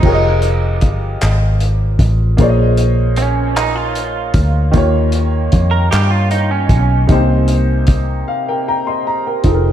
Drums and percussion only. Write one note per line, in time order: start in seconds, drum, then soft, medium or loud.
0.03 kick loud
0.03 crash medium
0.42 closed hi-hat medium
0.81 kick medium
0.81 closed hi-hat medium
1.21 clap loud
1.21 closed hi-hat medium
1.60 closed hi-hat medium
1.99 kick medium
1.99 closed hi-hat medium
2.38 kick loud
2.38 closed hi-hat medium
2.77 closed hi-hat medium
3.16 closed hi-hat medium
3.56 clap loud
3.56 closed hi-hat medium
3.95 closed hi-hat medium
4.34 kick medium
4.34 closed hi-hat medium
4.74 kick loud
4.74 closed hi-hat medium
5.12 closed hi-hat medium
5.52 kick medium
5.52 closed hi-hat medium
5.92 clap loud
5.92 closed hi-hat medium
6.31 closed hi-hat medium
6.69 kick loud
6.69 closed hi-hat medium
7.09 kick loud
7.09 closed hi-hat medium
7.48 closed hi-hat medium
7.87 kick medium
7.87 closed hi-hat medium
9.44 kick medium
9.44 closed hi-hat medium